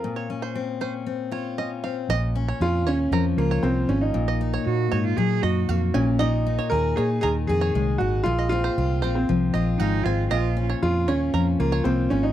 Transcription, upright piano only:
\new Staff \with { instrumentName = "Upright piano" } { \time 4/4 \key bes \minor \tempo 4 = 117 bes'2. r4 | r4 f'8 des'4 bes8 c'8 des'16 ees'16~ | ees'4.~ ees'16 r4. r16 des'8 | ees'4 bes'8 aes'8 aes'8 aes'4 ges'8 |
f'8 f'4~ f'16 c'4.~ c'16 r8 | r4 f'8 des'4 bes8 c'8 des'16 ees'16 | }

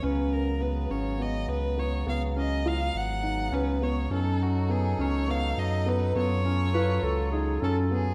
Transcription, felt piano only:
\new Staff \with { instrumentName = "Felt piano" } { \time 7/8 \key des \mixolydian \tempo 4 = 103 des'4 ces'8 des'8 ces'4 ces'8 | ces'8 des'8 f'4 ees'8 des'8 ces'8 | des'4 ces'8 des'8 ces'4 ces'8 | ces'8 des'8 f'4 ees'8 des'8 ces'8 | }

